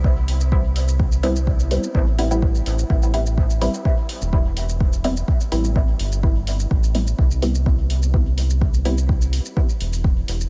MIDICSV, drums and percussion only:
0, 0, Header, 1, 2, 480
1, 0, Start_track
1, 0, Key_signature, 0, "minor"
1, 0, Tempo, 476190
1, 1003, Time_signature, 4, 2, 24, 8
1, 10577, End_track
2, 0, Start_track
2, 0, Title_t, "Drums"
2, 43, Note_on_c, 9, 36, 122
2, 144, Note_off_c, 9, 36, 0
2, 283, Note_on_c, 9, 46, 87
2, 384, Note_off_c, 9, 46, 0
2, 409, Note_on_c, 9, 82, 48
2, 510, Note_off_c, 9, 82, 0
2, 523, Note_on_c, 9, 36, 127
2, 624, Note_off_c, 9, 36, 0
2, 764, Note_on_c, 9, 46, 74
2, 864, Note_off_c, 9, 46, 0
2, 889, Note_on_c, 9, 82, 51
2, 990, Note_off_c, 9, 82, 0
2, 1003, Note_on_c, 9, 36, 124
2, 1104, Note_off_c, 9, 36, 0
2, 1129, Note_on_c, 9, 82, 40
2, 1230, Note_off_c, 9, 82, 0
2, 1243, Note_on_c, 9, 46, 86
2, 1344, Note_off_c, 9, 46, 0
2, 1369, Note_on_c, 9, 82, 49
2, 1470, Note_off_c, 9, 82, 0
2, 1483, Note_on_c, 9, 36, 119
2, 1584, Note_off_c, 9, 36, 0
2, 1609, Note_on_c, 9, 82, 39
2, 1710, Note_off_c, 9, 82, 0
2, 1723, Note_on_c, 9, 46, 74
2, 1824, Note_off_c, 9, 46, 0
2, 1849, Note_on_c, 9, 82, 46
2, 1950, Note_off_c, 9, 82, 0
2, 1963, Note_on_c, 9, 36, 124
2, 2064, Note_off_c, 9, 36, 0
2, 2203, Note_on_c, 9, 46, 87
2, 2304, Note_off_c, 9, 46, 0
2, 2329, Note_on_c, 9, 82, 46
2, 2430, Note_off_c, 9, 82, 0
2, 2443, Note_on_c, 9, 36, 127
2, 2544, Note_off_c, 9, 36, 0
2, 2569, Note_on_c, 9, 82, 27
2, 2670, Note_off_c, 9, 82, 0
2, 2683, Note_on_c, 9, 46, 70
2, 2784, Note_off_c, 9, 46, 0
2, 2809, Note_on_c, 9, 82, 47
2, 2910, Note_off_c, 9, 82, 0
2, 2923, Note_on_c, 9, 36, 121
2, 3024, Note_off_c, 9, 36, 0
2, 3049, Note_on_c, 9, 82, 39
2, 3150, Note_off_c, 9, 82, 0
2, 3163, Note_on_c, 9, 46, 78
2, 3264, Note_off_c, 9, 46, 0
2, 3289, Note_on_c, 9, 82, 49
2, 3390, Note_off_c, 9, 82, 0
2, 3403, Note_on_c, 9, 36, 117
2, 3504, Note_off_c, 9, 36, 0
2, 3529, Note_on_c, 9, 82, 37
2, 3630, Note_off_c, 9, 82, 0
2, 3644, Note_on_c, 9, 46, 72
2, 3744, Note_off_c, 9, 46, 0
2, 3769, Note_on_c, 9, 82, 46
2, 3870, Note_off_c, 9, 82, 0
2, 3883, Note_on_c, 9, 36, 119
2, 3984, Note_off_c, 9, 36, 0
2, 4123, Note_on_c, 9, 46, 83
2, 4224, Note_off_c, 9, 46, 0
2, 4250, Note_on_c, 9, 82, 46
2, 4350, Note_off_c, 9, 82, 0
2, 4363, Note_on_c, 9, 36, 126
2, 4464, Note_off_c, 9, 36, 0
2, 4603, Note_on_c, 9, 46, 71
2, 4704, Note_off_c, 9, 46, 0
2, 4729, Note_on_c, 9, 82, 46
2, 4830, Note_off_c, 9, 82, 0
2, 4843, Note_on_c, 9, 36, 115
2, 4944, Note_off_c, 9, 36, 0
2, 4969, Note_on_c, 9, 82, 40
2, 5070, Note_off_c, 9, 82, 0
2, 5083, Note_on_c, 9, 46, 80
2, 5184, Note_off_c, 9, 46, 0
2, 5209, Note_on_c, 9, 82, 47
2, 5309, Note_off_c, 9, 82, 0
2, 5323, Note_on_c, 9, 36, 115
2, 5424, Note_off_c, 9, 36, 0
2, 5449, Note_on_c, 9, 82, 38
2, 5549, Note_off_c, 9, 82, 0
2, 5563, Note_on_c, 9, 46, 72
2, 5663, Note_off_c, 9, 46, 0
2, 5689, Note_on_c, 9, 82, 46
2, 5789, Note_off_c, 9, 82, 0
2, 5803, Note_on_c, 9, 36, 117
2, 5904, Note_off_c, 9, 36, 0
2, 6043, Note_on_c, 9, 46, 83
2, 6144, Note_off_c, 9, 46, 0
2, 6169, Note_on_c, 9, 82, 44
2, 6270, Note_off_c, 9, 82, 0
2, 6283, Note_on_c, 9, 36, 121
2, 6384, Note_off_c, 9, 36, 0
2, 6523, Note_on_c, 9, 46, 69
2, 6624, Note_off_c, 9, 46, 0
2, 6649, Note_on_c, 9, 82, 47
2, 6750, Note_off_c, 9, 82, 0
2, 6763, Note_on_c, 9, 36, 112
2, 6864, Note_off_c, 9, 36, 0
2, 6889, Note_on_c, 9, 82, 42
2, 6990, Note_off_c, 9, 82, 0
2, 7003, Note_on_c, 9, 46, 75
2, 7103, Note_off_c, 9, 46, 0
2, 7129, Note_on_c, 9, 82, 47
2, 7230, Note_off_c, 9, 82, 0
2, 7243, Note_on_c, 9, 36, 108
2, 7344, Note_off_c, 9, 36, 0
2, 7369, Note_on_c, 9, 82, 38
2, 7470, Note_off_c, 9, 82, 0
2, 7483, Note_on_c, 9, 46, 68
2, 7584, Note_off_c, 9, 46, 0
2, 7609, Note_on_c, 9, 82, 46
2, 7710, Note_off_c, 9, 82, 0
2, 7723, Note_on_c, 9, 36, 111
2, 7824, Note_off_c, 9, 36, 0
2, 7963, Note_on_c, 9, 46, 83
2, 8064, Note_off_c, 9, 46, 0
2, 8089, Note_on_c, 9, 82, 46
2, 8190, Note_off_c, 9, 82, 0
2, 8203, Note_on_c, 9, 36, 115
2, 8304, Note_off_c, 9, 36, 0
2, 8444, Note_on_c, 9, 46, 67
2, 8544, Note_off_c, 9, 46, 0
2, 8570, Note_on_c, 9, 82, 49
2, 8670, Note_off_c, 9, 82, 0
2, 8683, Note_on_c, 9, 36, 114
2, 8784, Note_off_c, 9, 36, 0
2, 8810, Note_on_c, 9, 82, 43
2, 8910, Note_off_c, 9, 82, 0
2, 8924, Note_on_c, 9, 46, 79
2, 9025, Note_off_c, 9, 46, 0
2, 9050, Note_on_c, 9, 82, 51
2, 9150, Note_off_c, 9, 82, 0
2, 9163, Note_on_c, 9, 36, 117
2, 9264, Note_off_c, 9, 36, 0
2, 9290, Note_on_c, 9, 82, 42
2, 9390, Note_off_c, 9, 82, 0
2, 9404, Note_on_c, 9, 46, 72
2, 9504, Note_off_c, 9, 46, 0
2, 9529, Note_on_c, 9, 82, 48
2, 9630, Note_off_c, 9, 82, 0
2, 9643, Note_on_c, 9, 36, 116
2, 9744, Note_off_c, 9, 36, 0
2, 9769, Note_on_c, 9, 82, 29
2, 9870, Note_off_c, 9, 82, 0
2, 9884, Note_on_c, 9, 46, 81
2, 9985, Note_off_c, 9, 46, 0
2, 10010, Note_on_c, 9, 46, 31
2, 10010, Note_on_c, 9, 82, 48
2, 10111, Note_off_c, 9, 46, 0
2, 10111, Note_off_c, 9, 82, 0
2, 10124, Note_on_c, 9, 36, 121
2, 10224, Note_off_c, 9, 36, 0
2, 10364, Note_on_c, 9, 46, 69
2, 10465, Note_off_c, 9, 46, 0
2, 10490, Note_on_c, 9, 82, 51
2, 10577, Note_off_c, 9, 82, 0
2, 10577, End_track
0, 0, End_of_file